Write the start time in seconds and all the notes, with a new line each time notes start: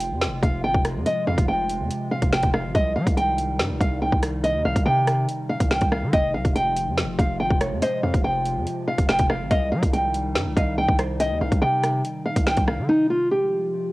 Already playing: F1 C3 F3 G#3 F4 G5
0.00 closed hi-hat
0.11 F2
0.21 snare, closed hi-hat
0.27 F1
0.43 F1 F5, kick, closed hi-hat
0.64 G#1 G5
0.74 F1, kick
0.85 cross-stick, closed hi-hat
0.95 F2
1.06 D#5, closed hi-hat
1.27 F2 F5
1.38 F1, kick, closed hi-hat
1.48 F1 G5
1.69 closed hi-hat
1.80 F2
1.91 closed hi-hat
2.11 F5
2.22 F1, kick, closed hi-hat
2.33 G5, snare
2.43 F1, kick, closed hi-hat
2.54 F5, cross-stick
2.64 G#1
2.75 C2 C3 D#3 G3 D#4 D#5, kick, closed hi-hat
2.96 G3 F5
3.07 C2, kick, closed hi-hat
3.17 G5, closed hi-hat
3.38 closed hi-hat
3.60 G2, snare, closed hi-hat
3.70 C2
3.81 C2 F5, kick, closed hi-hat
4.02 G5
4.12 C2, kick
4.23 cross-stick, closed hi-hat
4.44 D#5, closed hi-hat
4.55 D#2
4.65 C2 F5
4.76 C2, kick, closed hi-hat
4.86 C3 G5
5.07 cross-stick, closed hi-hat
5.29 closed hi-hat
5.50 F5
5.60 C2, kick, closed hi-hat
5.71 G5, snare
5.81 C2, kick, closed hi-hat
5.92 F5, cross-stick
6.03 D#3
6.13 F1 F3 G#3 F4 D#5 G5, kick, closed hi-hat
6.34 C2 F5
6.45 F1, kick, closed hi-hat
6.55 G5, closed hi-hat
6.76 closed hi-hat
6.87 F2
6.98 snare, closed hi-hat
7.03 F1
7.19 F1 F5, kick, closed hi-hat
7.40 G#1 G5
7.50 F1, kick
7.61 C#5, cross-stick, closed hi-hat
7.71 F2
7.82 C5 D#5, closed hi-hat
8.03 F2 F5
8.14 F1, kick, closed hi-hat
8.24 F1 G5
8.45 closed hi-hat
8.56 F2
8.67 closed hi-hat
8.88 F5
8.98 F1, kick, closed hi-hat
9.09 G5, snare
9.19 F1, kick, closed hi-hat
9.30 F5, cross-stick
9.40 G#1
9.51 C2 D#3 G3 D#4 D#5 F5, kick, closed hi-hat
9.72 G3 F5
9.83 C2, kick, closed hi-hat
9.93 G5, closed hi-hat
10.14 closed hi-hat
10.36 G2, snare, closed hi-hat
10.46 C2
10.57 C2 D#5 F5, kick, closed hi-hat
10.78 G5
10.88 C2, kick
10.99 C5, cross-stick, closed hi-hat
11.20 D#5 G5, closed hi-hat
11.31 D#2
11.41 C2 F5
11.52 C2, kick, closed hi-hat
11.62 C3 G5
11.83 cross-stick, closed hi-hat
12.05 closed hi-hat
12.26 F5
12.36 C2, kick, closed hi-hat
12.47 G5, snare
12.57 C2, kick, closed hi-hat
12.68 F5, cross-stick
12.79 D#3
12.89 C3 F3 G#3 D#4 F4
13.10 F4
13.31 G4